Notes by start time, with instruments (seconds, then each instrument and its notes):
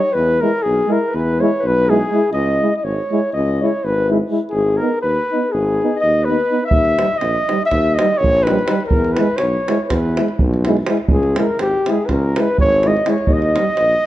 Already playing: clarinet C#5, flugelhorn C#5
0.12 tuba E2, clarinet B4, flugelhorn B4
0.40 euphonium G#3, trombone E4, clarinet A#4, flugelhorn A#4
0.63 tuba B1, flugelhorn G#4, clarinet G#4
0.87 euphonium G#3, trombone E4, clarinet A#4
0.93 flugelhorn A#4
1.08 clarinet B4
1.14 tuba E2, flugelhorn B4
1.40 euphonium G#3, trombone E4, clarinet C#5, flugelhorn C#5
1.60 clarinet B4
1.64 tuba B1, flugelhorn B4
1.87 euphonium G#3, trombone E4, clarinet G#4, flugelhorn G#4
2.11 euphonium G#3, trombone E4
2.32 tuba C#2, clarinet D#5, flugelhorn D#5
2.62 euphonium G#3, trombone E4
2.77 flugelhorn D#5, clarinet D#5
2.83 tuba G#1, clarinet C#5, flugelhorn C#5
3.11 euphonium G#3, trombone E4
3.33 tuba C#2, flugelhorn D#5, clarinet D#5
3.62 euphonium G#3, trombone E4, flugelhorn C#5
3.67 clarinet C#5
3.85 tuba G#1, flugelhorn B4
3.89 clarinet B4
4.10 euphonium G#3, trombone E4
4.31 euphonium G#3, trombone E4
4.50 tuba G#1, flugelhorn G#4
4.56 clarinet G#4
4.77 euphonium B3, flugelhorn A#4, clarinet A#4
4.82 trombone D#4
5.01 tuba D#2, clarinet B4, flugelhorn B4
5.32 euphonium B3, trombone D#4
5.49 clarinet G#4, flugelhorn G#4
5.53 tuba G#1
5.82 euphonium B3, trombone D#4
5.96 clarinet D#5
6.01 tuba D#2, flugelhorn D#5
6.22 clarinet B4, flugelhorn B4
6.28 euphonium B3, trombone D#4
6.51 euphonium B3, trombone D#4
6.65 clarinet E5, flugelhorn E5
6.71 tuba D#2, davul low
6.85 davul high
6.99 euphonium G3, trombone D#4, davul high
7.15 clarinet D#5, flugelhorn D#5
7.21 tuba A#1, davul high
7.49 euphonium G3, trombone D#4, davul high
7.66 clarinet E5, flugelhorn E5
7.71 tuba D#2, davul high, davul low
7.95 flugelhorn D#5, clarinet D#5
7.99 euphonium G3, trombone D#4, davul high
8.11 davul high
8.18 tuba A#1, flugelhorn C#5, clarinet C#5
8.24 davul low
8.37 davul high
8.43 trombone D#4, flugelhorn B4, clarinet B4, davul high
8.49 euphonium G3
8.59 davul high
8.68 euphonium G3, trombone D#4, davul high
8.80 davul high
8.87 flugelhorn A#4, clarinet A#4, davul low
8.91 tuba E2
9.04 davul high
9.12 trombone E4, flugelhorn B4
9.17 euphonium G#3, clarinet B4, davul high
9.37 flugelhorn C#5, clarinet C#5, davul high
9.41 tuba B1
9.68 euphonium G#3, trombone E4, davul high
9.84 flugelhorn B4 C#5, clarinet C#5
9.89 tuba E2, clarinet B4, davul high, davul low
10.17 euphonium G#3, trombone E4, davul high
10.28 davul high
10.39 tuba B1, davul low
10.54 davul high
10.65 euphonium G#3, trombone E4, davul high
10.77 davul high
10.87 euphonium G#3, trombone E4, davul high
10.97 davul high
11.08 tuba C#2, flugelhorn G#4, davul low
11.14 clarinet G#4
11.23 davul high
11.36 euphonium G#3, trombone E4, clarinet A#4, davul high
11.42 flugelhorn A#4
11.59 tuba G#1, clarinet G4, flugelhorn G4, davul high
11.86 euphonium G#3, trombone E4, clarinet G#4, davul high
11.91 flugelhorn G#4
12.05 clarinet B4, flugelhorn B4, davul high, davul low
12.10 tuba C#2, clarinet A#4, flugelhorn A#4
12.36 euphonium G#3, trombone E4, clarinet B4, davul high
12.40 flugelhorn B4
12.48 davul high
12.58 tuba G#1, flugelhorn C#5, clarinet C#5, davul low
12.72 davul high
12.83 euphonium G#3, trombone E4, davul high
12.87 clarinet D#5, flugelhorn D#5
12.97 davul high
13.06 euphonium G#3, trombone E4, flugelhorn C#5, davul high
13.11 clarinet C#5
13.18 davul high
13.27 tuba D#2, clarinet D#5, davul low
13.33 flugelhorn D#5
13.42 davul high
13.56 euphonium G3, trombone D#4, davul high
13.77 tuba A#1, davul high
13.93 davul high